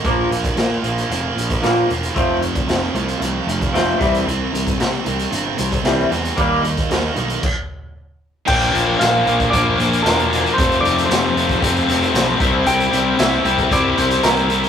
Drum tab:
CC |----------------|----------------|----------------|--------x-------|
HH |x-xxx-xxx-xxx-xx|x-xxx-xxx-xxx-xx|x-xxx-xxx-xxx-xx|x-xxx-xx--------|
SD |----o-------o---|----o-------o-o-|----o-------o-o-|----o-----------|
BD |o--o-------o----|o--o-------o--o-|---o-------o----|o--o----o-------|

CC |x---------------|----------------|----------------|
HH |-xx-x-xxx-xxxxxx|xxxxx-xxxxxxx-x-|xxx-x-xxx-xxxxxx|
SD |----o-------o-o-|----o-------o---|----o-------o---|
BD |o------oo-------|o------oo-----o-|-------oo-------|